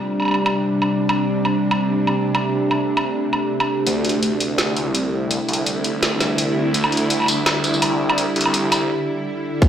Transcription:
0.00 3.83 C3 medium
0.00 0.97 G3 medium
0.00 3.83 D4 medium
0.20 low woodblock soft
0.22 low woodblock soft
0.25 low woodblock soft
0.28 low woodblock soft
0.31 low woodblock soft
0.34 low woodblock soft
0.46 low woodblock medium
0.82 low woodblock soft
1.00 3.84 A3 medium
1.09 low woodblock medium
1.45 low woodblock soft
1.71 low woodblock medium
2.07 low woodblock medium
2.35 low woodblock medium
2.71 low woodblock medium
2.97 low woodblock medium
3.33 low woodblock medium
3.60 low woodblock medium
3.86 4.87 D2 medium
3.86 9.57 D3 medium
3.86 6.71 A3 medium
3.86 9.57 E4 medium
3.86 closed hi-hat medium
4.05 closed hi-hat soft
4.09 closed hi-hat medium
4.23 closed hi-hat medium
4.40 closed hi-hat medium
4.58 snare loud
4.58 closed hi-hat medium
4.77 closed hi-hat medium
4.86 5.39 C2 loud
4.95 closed hi-hat medium
5.31 closed hi-hat medium
5.48 6.73 C2 medium
5.48 closed hi-hat soft
5.53 closed hi-hat medium
5.66 closed hi-hat medium
5.84 closed hi-hat medium
6.03 snare loud
6.03 closed hi-hat medium
6.20 snare medium
6.20 closed hi-hat medium
6.38 closed hi-hat medium
6.74 7.75 D2 loud
6.74 9.59 G3 medium
6.74 closed hi-hat medium
6.84 low woodblock medium
6.92 closed hi-hat soft
6.97 closed hi-hat medium
7.10 closed hi-hat medium
7.20 low woodblock soft
7.22 low woodblock soft
7.24 low woodblock soft
7.26 closed hi-hat medium
7.26 tambourine medium
7.26 low woodblock soft
7.46 snare loud
7.46 closed hi-hat medium
7.46 low woodblock medium
7.64 closed hi-hat medium
7.64 tambourine soft
7.74 8.26 C2 loud
7.74 tambourine soft
7.82 closed hi-hat medium
7.82 low woodblock medium
8.09 low woodblock medium
8.18 closed hi-hat medium
8.36 8.90 C2 medium
8.36 closed hi-hat soft
8.41 closed hi-hat medium
8.46 low woodblock soft
8.54 closed hi-hat medium
8.72 closed hi-hat medium
8.72 tambourine medium
8.72 low woodblock medium
9.62 9.69 D2 loud
9.62 kick loud
9.62 closed hi-hat medium

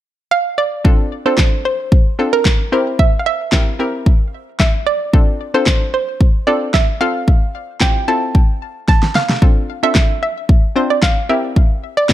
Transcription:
0.31 0.59 F5 loud
0.58 1.28 D5 medium
0.85 1.05 C4 medium
0.85 1.05 D4 medium
0.85 1.06 F4 medium
0.85 1.06 A4 medium
0.85 kick loud
1.26 1.73 C4 medium
1.26 1.73 D4 medium
1.26 1.73 F4 medium
1.26 1.73 A4 medium
1.26 1.64 C5 medium
1.38 kick loud
1.38 snare medium
1.38 clap loud
1.65 2.29 C5 loud
1.92 kick loud
2.19 2.60 C4 medium
2.19 2.60 D4 medium
2.19 2.60 F4 medium
2.19 2.60 A4 medium
2.33 2.74 A#4 medium
2.45 kick loud
2.45 snare medium
2.45 clap loud
2.72 3.37 C4 medium
2.72 3.37 E4 medium
2.72 3.37 G4 medium
2.72 3.38 A#4 medium
2.72 2.97 C5 medium
2.99 3.20 E5 medium
2.99 kick loud
3.19 3.26 F5 medium
3.26 4.29 E5 medium
3.52 3.67 C4 medium
3.52 3.67 E4 medium
3.52 3.67 G4 medium
3.52 3.67 A#4 medium
3.52 kick loud
3.52 snare medium
3.52 clap loud
3.79 4.33 C4 medium
3.79 4.33 E4 medium
3.79 4.34 G4 medium
3.79 4.34 A#4 medium
4.06 kick loud
4.60 4.72 E5 medium
4.60 kick loud
4.60 snare medium
4.60 clap loud
4.87 5.56 D5 medium
5.13 5.34 C4 medium
5.13 5.34 D4 medium
5.13 5.34 F4 medium
5.13 5.34 A4 medium
5.13 kick loud
5.54 6.01 C4 medium
5.54 6.01 D4 medium
5.54 6.01 F4 medium
5.54 6.01 A4 medium
5.54 5.93 C5 medium
5.66 kick loud
5.66 snare medium
5.66 clap loud
5.94 6.44 C5 medium
6.21 kick loud
6.47 6.88 C4 medium
6.47 6.89 D4 medium
6.47 6.89 F4 medium
6.47 6.89 A4 medium
6.47 6.75 D5 medium
6.74 6.99 E5 medium
6.74 kick loud
6.74 snare medium
6.74 clap loud
7.01 7.66 C4 medium
7.01 7.66 F4 medium
7.01 7.66 A4 medium
7.01 7.77 F5 loud
7.28 kick medium
7.81 7.96 C4 medium
7.81 7.96 E4 medium
7.81 7.96 F4 medium
7.81 7.96 G4 medium
7.81 8.06 G5 loud
7.81 kick loud
7.81 snare medium
7.81 clap loud
8.08 8.62 C4 medium
8.08 8.62 E4 medium
8.08 8.62 F4 medium
8.08 8.62 A4 medium
8.08 8.58 A5 loud
8.35 kick loud
8.88 9.14 A5 loud
8.88 kick loud
8.88 snare soft
9.03 snare medium
9.15 9.85 F5 loud
9.15 snare medium
9.29 snare medium
9.42 9.63 C4 medium
9.42 9.63 D4 medium
9.42 9.63 F4 medium
9.42 9.63 A4 medium
9.42 kick loud
9.83 10.30 C4 medium
9.83 10.30 D4 medium
9.83 10.30 F4 medium
9.83 10.30 A4 medium
9.83 10.21 E5 loud
9.95 kick loud
9.95 snare medium
9.95 clap loud
10.23 10.92 E5 loud
10.49 kick loud
10.76 11.17 C4 medium
10.76 11.17 D4 medium
10.76 11.17 F4 medium
10.76 11.17 C5 medium
10.90 11.03 D5 medium
11.03 11.28 F5 loud
11.03 kick loud
11.03 snare medium
11.03 clap loud
11.29 11.94 C4 medium
11.29 11.94 E4 medium
11.29 11.95 G4 medium
11.29 11.95 A#4 medium
11.29 11.93 E5 medium
11.56 kick loud
11.97 12.13 D5 medium
12.09 12.13 C4 medium
12.09 12.13 E4 medium
12.09 12.13 G4 medium
12.09 12.13 A#4 medium
12.09 kick loud
12.09 snare medium
12.09 clap loud

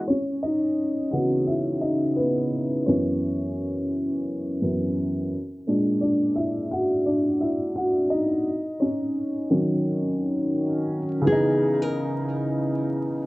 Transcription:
0.00 0.11 E3 medium
0.00 0.10 G#3 medium
0.00 0.11 B3 medium
0.00 0.10 F#4 medium
0.00 0.11 D#5 medium
0.08 0.42 C#4 medium
0.08 0.41 C#5 medium
0.43 1.10 D#4 medium
0.43 1.09 D#5 medium
1.11 2.84 C#3 medium
1.11 2.84 E3 soft
1.11 2.18 B3 medium
1.11 1.46 F#4 medium
1.11 1.48 F#5 medium
1.47 1.82 E4 medium
1.47 1.84 E5 medium
1.81 2.16 D#4 medium
1.81 2.15 D#5 medium
2.16 2.85 B3 medium
2.16 2.89 B4 medium
2.86 4.60 F#2 soft
2.86 4.61 E3 soft
2.86 4.61 B3 medium
2.86 4.94 C#4 medium
2.86 4.92 C#5 medium
4.62 4.94 F#2 soft
4.62 4.94 E3 soft
4.62 4.94 B3 soft
5.67 6.16 A#2 soft
5.67 6.16 G#3 soft
5.67 6.02 D4 medium
6.01 6.35 D4 medium
6.01 6.37 D5 medium
6.35 6.70 E4 medium
6.35 6.72 E5 medium
6.71 7.05 F#4 medium
6.71 7.04 F#5 medium
7.06 7.40 D4 medium
7.06 7.42 D5 medium
7.41 7.75 E4 medium
7.41 7.74 E5 medium
7.76 8.10 F#4 medium
7.76 8.12 F#5 medium
8.10 8.78 D#4 medium
8.10 8.83 D#5 medium
8.80 9.50 C#4 medium
8.80 10.16 C#5 medium
9.50 11.21 D#3 medium
9.50 11.21 F#3 soft
9.50 11.21 C#4 medium
11.22 13.26 C#3 medium
11.22 13.26 E3 medium
11.27 13.26 B3 soft
11.27 11.82 G#4 medium
11.32 13.26 D#4 medium
11.82 12.82 A#4 medium

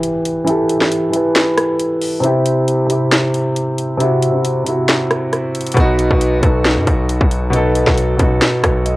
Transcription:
0.00 0.45 E3 loud
0.00 0.46 E4 loud
0.00 0.48 G4 loud
0.00 0.84 B4 loud
0.00 closed hi-hat medium
0.00 impact medium
0.25 closed hi-hat medium
0.45 0.76 E3 loud
0.45 0.77 E4 loud
0.45 0.78 G4 loud
0.45 closed hi-hat medium
0.50 0.79 A4 loud
0.69 closed hi-hat medium
0.79 1.09 E3 medium
0.79 1.10 E4 medium
0.79 1.11 G4 medium
0.79 snare medium
0.84 1.12 B4 medium
0.92 closed hi-hat medium
1.10 1.91 E3 medium
1.10 1.92 E4 medium
1.10 1.93 G4 medium
1.10 closed hi-hat medium
1.16 1.94 B4 loud
1.36 snare loud
1.36 closed hi-hat medium
1.58 cross-stick medium
1.58 closed hi-hat medium
1.80 closed hi-hat medium
2.02 open hi-hat medium
2.21 2.82 C3 loud
2.21 2.83 C4 loud
2.21 2.83 E4 loud
2.21 closed hi-hat medium
2.26 2.84 G4 loud
2.46 closed hi-hat medium
2.68 closed hi-hat medium
2.87 3.67 C3 medium
2.87 3.68 C4 medium
2.87 3.69 E4 medium
2.87 closed hi-hat medium
2.92 3.70 G4 loud
3.12 snare loud
3.12 closed hi-hat medium
3.34 closed hi-hat medium
3.56 closed hi-hat medium
3.78 closed hi-hat medium
3.97 4.29 C3 loud
3.97 4.30 C4 loud
3.97 4.31 E4 loud
3.97 closed hi-hat medium
4.03 4.32 F#4 loud
4.22 closed hi-hat medium
4.31 4.62 C3 medium
4.31 4.63 C4 medium
4.31 4.64 E4 medium
4.37 4.65 F#4 medium
4.45 closed hi-hat medium
4.64 5.44 C3 medium
4.64 5.45 C4 medium
4.64 5.46 E4 medium
4.64 closed hi-hat medium
4.70 5.47 F#4 loud
4.89 snare loud
4.89 closed hi-hat medium
5.11 cross-stick loud
5.11 closed hi-hat medium
5.33 cross-stick medium
5.33 closed hi-hat medium
5.55 closed hi-hat medium
5.55 open hi-hat medium
5.61 closed hi-hat medium
5.67 closed hi-hat medium
5.72 6.35 B2 loud
5.72 closed hi-hat medium
5.76 6.09 B1 loud
5.76 6.36 B3 loud
5.76 6.37 D#4 loud
5.76 6.38 F#4 loud
5.76 kick loud
5.76 closed hi-hat medium
5.99 closed hi-hat medium
6.11 6.42 B1 loud
6.11 kick medium
6.21 closed hi-hat medium
6.40 6.78 B1 loud
6.40 7.20 B2 medium
6.40 7.21 B3 medium
6.40 7.22 D#4 medium
6.40 kick loud
6.40 closed hi-hat medium
6.45 7.23 A4 medium
6.65 snare loud
6.65 closed hi-hat medium
6.77 6.87 F#2 loud
6.87 7.20 B1 loud
6.87 kick loud
6.87 closed hi-hat medium
7.09 closed hi-hat medium
7.21 7.84 B1 loud
7.21 kick medium
7.31 closed hi-hat medium
7.50 7.82 B2 loud
7.50 7.83 B3 loud
7.50 7.83 D#4 loud
7.50 closed hi-hat medium
7.56 7.84 A4 loud
7.75 closed hi-hat medium
7.84 8.18 B1 loud
7.84 8.15 B2 medium
7.84 8.16 B3 medium
7.84 8.17 D#4 medium
7.84 kick loud
7.84 snare medium
7.90 8.18 F#4 medium
7.98 closed hi-hat medium
8.17 8.41 B1 loud
8.17 8.96 B2 medium
8.17 8.96 B3 medium
8.17 8.96 D#4 medium
8.17 kick loud
8.17 closed hi-hat medium
8.22 8.96 F#4 medium
8.42 snare loud
8.42 closed hi-hat medium
8.64 8.96 B1 loud
8.64 8.84 B4 medium
8.64 kick loud
8.64 cross-stick loud
8.64 closed hi-hat medium
8.85 8.96 D#5 medium
8.85 closed hi-hat medium

